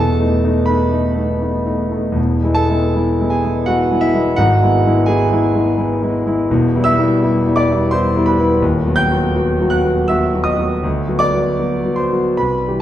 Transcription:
0.00 0.19 E1 medium
0.00 0.19 E2 medium
0.00 0.63 A4 medium
0.00 0.67 A5 loud
0.20 0.42 A3 medium
0.20 0.42 B3 medium
0.20 0.42 D#4 medium
0.44 0.66 A3 medium
0.44 0.66 B3 medium
0.44 0.66 D#4 medium
0.66 0.90 A3 medium
0.66 0.90 B3 soft
0.66 0.90 D#4 medium
0.66 2.13 B4 medium
0.66 2.16 B5 medium
0.91 1.14 A3 medium
0.91 1.14 B3 soft
0.91 1.15 D#4 medium
1.16 1.39 A3 soft
1.16 1.39 B3 soft
1.16 1.39 D#4 medium
1.41 1.64 A3 soft
1.41 1.64 B3 medium
1.41 1.64 D#4 medium
1.65 1.89 A3 soft
1.65 1.89 B3 medium
1.65 1.89 D#4 medium
1.92 2.15 A3 medium
1.92 2.15 B3 medium
1.92 2.15 D#4 medium
2.12 2.42 E1 medium
2.12 2.40 E2 medium
2.44 2.67 G#3 soft
2.44 2.67 B3 medium
2.44 2.68 E4 medium
2.55 3.27 A4 medium
2.55 3.30 A5 loud
2.70 2.93 G#3 medium
2.70 2.93 B3 medium
2.70 2.93 E4 medium
2.95 3.17 G#3 medium
2.95 3.18 B3 medium
2.95 3.18 E4 medium
3.20 3.41 G#3 medium
3.20 3.42 B3 medium
3.20 3.42 E4 medium
3.30 3.64 G#4 medium
3.30 3.66 G#5 medium
3.44 3.65 G#3 soft
3.44 3.65 B3 medium
3.44 3.65 E4 medium
3.66 3.88 G#3 medium
3.66 3.88 B3 medium
3.66 3.88 E4 medium
3.66 3.99 F#4 medium
3.66 4.01 F#5 loud
3.91 4.11 G#3 medium
3.91 4.12 B3 medium
3.91 4.00 E4 medium
4.01 4.14 E4 medium
4.01 4.36 E5 loud
4.15 4.35 G#3 medium
4.15 4.35 B3 medium
4.15 4.36 E4 medium
4.36 4.60 G#1 medium
4.36 4.60 G#2 medium
4.36 5.03 F#4 medium
4.36 5.07 F#5 loud
4.62 4.82 G#3 medium
4.62 4.83 B3 medium
4.62 4.83 E4 medium
4.86 5.06 G#3 medium
4.86 5.06 B3 medium
4.86 5.06 E4 medium
5.06 5.28 G#3 medium
5.06 5.28 B3 medium
5.06 5.29 E4 medium
5.06 6.45 G#4 medium
5.06 6.49 G#5 loud
5.31 5.52 G#3 medium
5.31 5.52 B3 medium
5.31 5.52 E4 medium
5.55 5.75 G#3 medium
5.55 5.76 B3 medium
5.55 5.76 E4 medium
5.78 5.99 G#3 medium
5.78 5.99 B3 medium
5.78 5.99 E4 medium
6.02 6.23 G#3 medium
6.02 6.24 B3 medium
6.02 6.24 E4 medium
6.26 6.47 G#3 medium
6.26 6.47 B3 medium
6.26 6.48 E4 medium
6.50 6.73 E1 medium
6.50 6.73 E2 medium
6.75 6.96 G3 medium
6.75 6.96 B3 medium
6.75 6.96 E4 medium
6.84 7.53 E5 loud
6.84 7.56 E6 loud
6.98 7.19 G3 medium
6.98 7.19 B3 medium
6.98 7.20 E4 medium
7.22 7.43 G3 medium
7.22 7.44 B3 medium
7.22 7.44 E4 medium
7.46 7.67 G3 medium
7.46 7.67 B3 medium
7.46 7.67 E4 medium
7.56 7.90 D5 medium
7.56 7.92 D6 loud
7.71 7.91 G3 medium
7.71 7.91 B3 medium
7.71 7.91 E4 medium
7.91 8.13 G3 medium
7.91 8.14 B3 medium
7.91 8.14 E4 medium
7.91 8.24 C5 medium
7.91 8.26 C6 loud
8.16 8.36 G3 medium
8.16 8.37 B3 medium
8.16 8.37 E4 medium
8.26 8.59 B4 medium
8.26 8.61 B5 medium
8.39 8.59 G3 medium
8.39 8.60 B3 medium
8.39 8.60 E4 medium
8.61 8.85 D#1 medium
8.61 8.85 D#2 medium
8.86 9.08 F#3 medium
8.86 9.08 B3 medium
8.86 9.09 F#4 medium
8.96 9.68 G5 medium
8.96 9.71 G6 loud
9.12 9.33 F#3 medium
9.12 9.33 B3 medium
9.12 9.33 F#4 medium
9.36 9.58 F#3 medium
9.36 9.58 B3 medium
9.36 9.58 F#4 medium
9.61 9.83 F#3 medium
9.61 9.83 B3 medium
9.61 9.83 F#4 medium
9.70 10.06 F#5 medium
9.70 10.08 F#6 medium
9.84 10.07 F#3 medium
9.84 10.07 B3 medium
9.84 10.07 F#4 medium
10.08 10.32 F#3 medium
10.08 10.32 B3 medium
10.08 10.32 F#4 medium
10.08 10.44 E5 medium
10.08 10.46 E6 loud
10.34 10.56 F#3 medium
10.34 10.57 B3 medium
10.34 10.57 F#4 medium
10.44 10.81 D#5 medium
10.44 10.83 D#6 medium
10.58 10.81 F#3 medium
10.58 10.81 B3 medium
10.58 10.81 F#4 medium
10.84 11.08 D2 medium
11.08 11.31 F#3 medium
11.08 11.31 B3 medium
11.08 11.31 F#4 medium
11.19 11.92 D5 medium
11.19 11.96 D6 loud
11.34 11.56 F#3 medium
11.34 11.56 B3 medium
11.34 11.57 F#4 medium
11.59 11.82 F#3 medium
11.59 11.82 B3 medium
11.59 11.82 F#4 medium
11.85 12.08 F#3 soft
11.85 12.09 B3 medium
11.85 12.09 F#4 medium
11.96 12.35 C5 medium
11.96 12.37 C6 medium
12.12 12.36 F#3 soft
12.12 12.36 B3 soft
12.12 12.36 F#4 medium
12.37 12.65 C2 medium
12.37 12.77 B4 medium
12.37 12.79 B5 medium
12.68 12.82 E3 soft
12.68 12.82 G3 soft
12.68 12.82 G4 soft

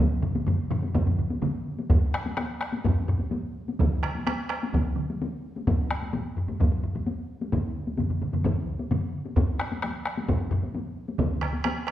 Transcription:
0.22 taiko low-mid medium
0.22 taiko mid medium
0.35 taiko low-mid medium
0.35 taiko mid medium
0.35 taiko high medium
0.47 taiko low-mid medium
0.47 taiko mid medium
0.47 taiko high medium
0.71 taiko low-mid loud
0.71 taiko mid loud
0.83 taiko high medium
0.94 taiko loud
0.94 taiko low-mid medium
0.94 taiko mid medium
0.94 taiko high medium
1.06 taiko low-mid medium
1.06 taiko mid medium
1.18 taiko low-mid medium
1.18 taiko mid medium
1.30 taiko high medium
1.42 taiko low-mid medium
1.42 taiko mid medium
1.42 taiko high medium
1.79 taiko high medium
1.90 taiko loud
1.90 taiko low-mid medium
1.90 taiko high medium
2.14 taiko rim medium
2.26 taiko high medium
2.37 taiko rim medium
2.37 taiko high medium
2.61 taiko rim medium
2.73 taiko high medium
2.84 taiko loud
2.84 taiko low-mid loud
2.84 taiko high medium
3.08 taiko low-mid medium
3.20 taiko high medium
3.32 taiko high medium
3.68 taiko high medium
3.79 taiko loud
3.79 taiko mid loud
3.79 taiko high medium
4.03 taiko rim medium
4.15 taiko high medium
4.27 taiko rim medium
4.27 taiko high medium
4.50 taiko rim medium
4.63 taiko high medium
4.73 taiko loud
4.73 taiko mid medium
4.73 taiko high medium
4.96 taiko mid medium
5.10 taiko high medium
5.22 taiko high medium
5.56 taiko high medium
5.67 taiko loud
5.67 taiko low-mid loud
5.67 taiko high medium
5.91 taiko rim medium
6.02 taiko high soft
6.13 taiko low-mid medium
6.13 taiko high medium
6.37 taiko low-mid medium
6.48 taiko low-mid medium
6.48 taiko high medium
6.60 taiko loud
6.60 taiko low-mid medium
6.60 taiko high medium
6.71 taiko low-mid medium
6.83 taiko low-mid medium
6.95 taiko low-mid medium
6.95 taiko high medium
7.06 taiko high medium
7.41 taiko high medium
7.52 taiko loud
7.52 taiko low-mid medium
7.52 taiko mid medium
7.52 taiko high medium
7.87 taiko high medium
7.98 taiko low-mid medium
7.98 taiko mid medium
7.98 taiko high medium
8.10 taiko low-mid medium
8.10 taiko mid medium
8.22 taiko low-mid medium
8.22 taiko mid medium
8.22 taiko high soft
8.33 taiko low-mid medium
8.33 taiko mid medium
8.33 taiko high medium
8.45 taiko loud
8.45 taiko low-mid loud
8.45 taiko mid medium
8.45 taiko high medium
8.79 taiko high medium
8.91 taiko low-mid loud
8.91 taiko mid medium
8.91 taiko high medium
9.26 taiko high medium
9.37 taiko loud
9.37 taiko low-mid medium
9.37 taiko high medium
9.60 taiko rim medium
9.72 taiko high medium
9.82 taiko rim medium
9.82 taiko high medium
10.06 taiko rim medium
10.18 taiko high medium
10.28 taiko loud
10.28 taiko low-mid loud
10.28 taiko high medium
10.51 taiko low-mid loud
10.63 taiko high medium
10.75 taiko high medium
11.08 taiko high medium
11.19 taiko loud
11.19 taiko mid loud
11.19 taiko high medium
11.42 taiko rim medium
11.53 taiko high medium
11.64 taiko rim medium
11.64 taiko high medium
11.87 taiko rim medium

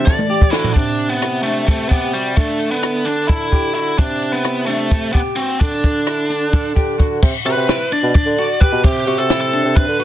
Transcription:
0.00 0.15 C3 medium
0.00 0.71 E3 medium
0.00 0.72 A3 medium
0.00 0.72 D4 medium
0.00 0.73 F#4 medium
0.05 0.26 A4 medium
0.05 0.54 D5 medium
0.05 kick loud
0.05 snare medium
0.19 high tom medium
0.30 0.49 G4 medium
0.41 kick medium
0.51 0.73 D3 medium
0.51 0.73 E4 loud
0.51 0.71 F#4 medium
0.51 0.71 C5 medium
0.51 snare medium
0.64 floor tom medium
0.74 2.34 C3 medium
0.74 1.07 D4 medium
0.74 1.14 D4 medium
0.74 kick medium
0.74 closed hi-hat medium
0.99 closed hi-hat soft
1.10 1.43 B3 medium
1.22 1.41 E4 medium
1.22 cross-stick medium
1.22 closed hi-hat medium
1.43 1.65 A3 medium
1.43 1.64 D4 medium
1.43 closed hi-hat soft
1.67 1.89 A3 medium
1.67 1.87 A4 medium
1.67 kick medium
1.67 closed hi-hat medium
1.89 2.11 B3 medium
1.89 2.10 G4 medium
1.89 kick medium
1.89 closed hi-hat soft
2.13 2.35 G3 medium
2.13 2.33 F#4 medium
2.13 closed hi-hat soft
2.36 3.96 D3 medium
2.36 2.69 A3 medium
2.36 2.75 D4 medium
2.36 kick medium
2.36 closed hi-hat medium
2.60 closed hi-hat soft
2.71 3.07 B3 medium
2.83 3.02 E4 medium
2.83 cross-stick medium
2.83 closed hi-hat medium
3.05 3.28 D4 medium
3.05 3.26 D4 medium
3.05 closed hi-hat soft
3.28 3.73 E4 medium
3.28 3.49 A4 medium
3.28 kick medium
3.28 closed hi-hat medium
3.52 3.71 G4 medium
3.52 kick medium
3.52 closed hi-hat soft
3.75 3.98 E4 medium
3.75 3.95 F#4 medium
3.75 closed hi-hat soft
3.98 5.31 C3 medium
3.98 4.37 D4 medium
3.98 4.31 D4 medium
3.98 kick medium
3.98 closed hi-hat medium
4.22 closed hi-hat soft
4.32 4.65 B3 medium
4.45 4.64 E4 medium
4.45 cross-stick medium
4.45 closed hi-hat medium
4.66 5.10 A3 medium
4.66 4.87 D4 medium
4.66 closed hi-hat soft
4.91 5.10 A4 medium
4.91 kick medium
4.91 closed hi-hat medium
5.13 5.19 B3 medium
5.13 5.33 G4 medium
5.13 kick medium
5.13 closed hi-hat soft
5.36 5.61 C4 medium
5.36 5.57 F#4 medium
5.36 closed hi-hat soft
5.60 7.19 D3 medium
5.60 6.72 D4 medium
5.60 5.99 D4 medium
5.60 kick medium
5.60 closed hi-hat medium
5.84 kick medium
5.84 closed hi-hat soft
6.07 6.26 E4 medium
6.07 cross-stick medium
6.07 closed hi-hat medium
6.30 6.49 D4 medium
6.30 closed hi-hat soft
6.53 6.72 A4 medium
6.53 kick medium
6.53 closed hi-hat medium
6.76 6.95 G4 medium
6.76 kick medium
6.76 closed hi-hat soft
6.98 7.18 F#4 medium
6.98 kick medium
6.98 closed hi-hat medium
7.23 7.33 C3 medium
7.23 kick loud
7.23 crash loud
7.45 7.56 C3 medium
7.45 7.65 F#4 medium
7.45 7.89 B4 medium
7.45 ride medium
7.57 7.78 C3 medium
7.69 7.88 E4 medium
7.69 snare loud
7.69 ride medium
7.92 8.11 D4 medium
7.92 8.14 D5 medium
7.92 ride medium
8.03 8.14 B2 medium
8.15 8.34 D4 medium
8.15 8.63 D5 loud
8.15 kick loud
8.15 ride medium
8.26 8.47 D3 medium
8.38 8.58 F#4 medium
8.38 ride medium
8.60 8.80 G4 medium
8.60 8.85 B4 medium
8.60 kick medium
8.60 ride medium
8.72 8.83 B2 medium
8.84 9.05 C3 medium
8.84 9.20 G4 medium
8.84 kick loud
8.84 ride medium
9.07 9.17 C3 medium
9.07 9.26 F#4 medium
9.07 ride medium
9.18 9.60 C3 medium
9.18 9.40 A4 medium
9.30 9.49 E4 medium
9.30 snare loud
9.30 ride medium
9.41 9.76 A4 medium
9.53 9.73 D4 medium
9.53 ride medium
9.65 9.86 C3 medium
9.76 9.96 D4 medium
9.76 10.04 B4 medium
9.76 kick loud
9.76 ride medium
9.88 9.98 D3 medium
10.00 10.04 F#4 medium
10.00 ride medium

